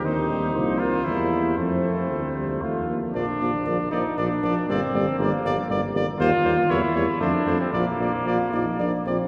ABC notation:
X:1
M:3/4
L:1/16
Q:1/4=117
K:Bb
V:1 name="Trumpet"
c4 c8 | c8- c2 z2 | d2 d2 d2 d2 d2 d2 | d2 d2 d2 d2 d2 d2 |
c2 c2 ^c2 c2 =c2 c2 | d2 d2 d2 d2 d2 d2 |]
V:2 name="Flugelhorn"
E6 F2 =E4 | A,8 F3 z | D6 E2 D4 | C4 B,4 z4 |
F4 =E4 D3 C | B,8- B,2 z2 |]
V:3 name="French horn"
C4 B,4 B,4 | C8- C2 z2 | B,2 B,2 B,2 B,2 B,2 B,2 | B,2 B,2 B,2 B,2 B,2 B,2 |
B,2 B,2 B,2 B,2 A,2 A,2 | B,2 B,2 F2 E2 D2 C2 |]
V:4 name="Trombone" clef=bass
E,2 G,2 F,2 E,2 G,4 | F,4 F,2 G,2 A,2 B,2 | F,2 F,2 F,2 F,2 F,2 F,2 | G,2 G,2 G,2 G,2 G,2 G,2 |
G,2 G,2 G,2 G,2 F,2 F,2 | F,2 F,2 F,2 F,2 F,2 F,2 |]
V:5 name="Tuba" clef=bass
E,,4 C,,4 =E,,4 | F,,4 D,,4 E,,4 | B,,,2 B,,,2 B,,,2 B,,,2 B,,,2 B,,,2 | G,,,2 G,,,2 G,,,2 G,,,2 G,,,2 G,,,2 |
E,,2 E,,2 =E,,2 E,,2 F,,2 F,,2 | B,,,2 B,,,2 B,,,2 B,,,2 B,,,2 B,,,2 |]